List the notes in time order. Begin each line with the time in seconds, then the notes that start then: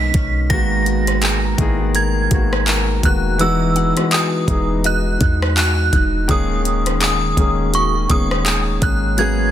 Already playing: B1 B2 D#3 G#3 B3 C#4 D#4 F#4 B6
0.14 B1 C#4, kick, closed hi-hat
0.50 G#1 D#3 G#3 A#3 B3 F#4 A#6, kick, closed hi-hat
0.86 F#4, closed hi-hat
1.07 cross-stick, closed hi-hat
1.22 G#4, clap, closed hi-hat
1.44 A#4
1.58 G#1 D#3 G#3 A#3 B3 E4 G#4, kick, closed hi-hat
1.80 F#4
1.95 A#4 G#6, closed hi-hat
2.30 G#1 D#3 G#3 A#3 B3 F#4, kick, closed hi-hat
2.53 cross-stick
2.67 A#4, clap, closed hi-hat
3.03 E1 D#3 G#3 A#3 B3 F#4 F#6, kick, closed hi-hat
3.38 E3 G#3 B3 D#4 F#4 E6, closed hi-hat
3.76 D#4 F#5, closed hi-hat
3.95 E3 G#3 B3 D#4 F#4, cross-stick, closed hi-hat
4.11 F#4 F#5 D#6, clap, closed hi-hat
4.47 E1 E3 G#3 B3 D#4 G#4, kick, closed hi-hat
4.84 F#4 D#5 F#6, closed hi-hat
5.21 E2 D#4, kick, closed hi-hat
5.42 cross-stick
5.57 F#4 F#6, clap, closed hi-hat
5.93 E1 D#4, kick, closed hi-hat
6.28 D#1 D#3 G#3 A#3 C#4 G#4 D#6, kick, closed hi-hat
6.65 C#4, closed hi-hat
6.86 cross-stick, closed hi-hat
7.01 G#4 D#6, clap, closed hi-hat
7.36 D#1 D#3 G#3 A#3 C#4 G#4, kick, closed hi-hat
7.73 F#4 C#6, closed hi-hat
7.95 G#4
8.08 D#1 D#3 G#3 A#3 B3 C#4 G#4 D#6, kick, closed hi-hat
8.30 C#4, cross-stick
8.45 G#4, clap, closed hi-hat
8.81 G#1 D#3 G#3 A#3 C#4 G#4 F#6, kick, closed hi-hat
9.17 F#3 G#3 A#3 B3 C#4 G#4 G#6, closed hi-hat